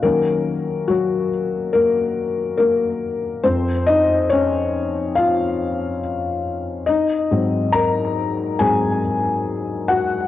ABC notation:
X:1
M:4/4
L:1/8
Q:1/4=70
K:Db
V:1 name="Felt piano"
[B,B]2 [G,G]2 [B,B]2 [B,B]2 | c [Ee] [Dd]2 [Ff]2 z2 | [Ee]2 [Bb]2 [Aa]3 [Gg] |]
V:2 name="Felt piano" clef=bass
[E,G,D]3 z4 z | [F,,F,C] z6 z | z [A,,G,C]3 [A,,G,C] z3 |]